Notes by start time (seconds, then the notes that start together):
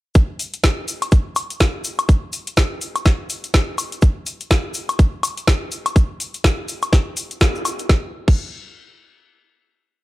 0.15 kick, closed hi-hat, cabasa
0.39 open hi-hat, cabasa
0.54 closed hi-hat, cabasa
0.64 kick, snare, closed hi-hat, cabasa
0.88 open hi-hat, cabasa
1.02 closed hi-hat, cabasa, high woodblock
1.12 kick, closed hi-hat, cabasa
1.36 open hi-hat, cabasa, high woodblock
1.50 closed hi-hat, cabasa
1.60 kick, snare, closed hi-hat, cabasa
1.84 open hi-hat, cabasa
1.99 closed hi-hat, cabasa, high woodblock
2.09 kick, closed hi-hat, cabasa
2.33 open hi-hat, cabasa
2.47 closed hi-hat, cabasa
2.57 kick, snare, closed hi-hat, cabasa
2.81 open hi-hat, cabasa
2.96 closed hi-hat, cabasa, high woodblock
3.06 kick, snare, closed hi-hat, cabasa
3.30 open hi-hat, cabasa
3.44 closed hi-hat, cabasa
3.54 kick, snare, closed hi-hat, cabasa
3.78 open hi-hat, cabasa, high woodblock
3.92 closed hi-hat, cabasa
4.02 kick, closed hi-hat, cabasa
4.26 open hi-hat, cabasa
4.41 closed hi-hat, cabasa
4.51 kick, snare, closed hi-hat, cabasa
4.74 open hi-hat, cabasa
4.89 closed hi-hat, cabasa, high woodblock
4.99 kick, closed hi-hat, cabasa
5.23 open hi-hat, cabasa, high woodblock
5.37 closed hi-hat, cabasa
5.47 kick, snare, closed hi-hat, cabasa
5.71 open hi-hat, cabasa
5.86 closed hi-hat, cabasa, high woodblock
5.96 kick, closed hi-hat, cabasa
6.20 open hi-hat, cabasa
6.34 closed hi-hat, cabasa
6.44 kick, snare, closed hi-hat, cabasa
6.68 open hi-hat, cabasa
6.82 closed hi-hat, cabasa, high woodblock
6.93 kick, snare, closed hi-hat, cabasa
7.17 open hi-hat, cabasa
7.31 closed hi-hat, cabasa
7.41 kick, snare, closed hi-hat, cabasa
7.55 cabasa
7.65 open hi-hat, cabasa, high woodblock
7.79 closed hi-hat, cabasa
7.89 kick, snare
8.28 kick, crash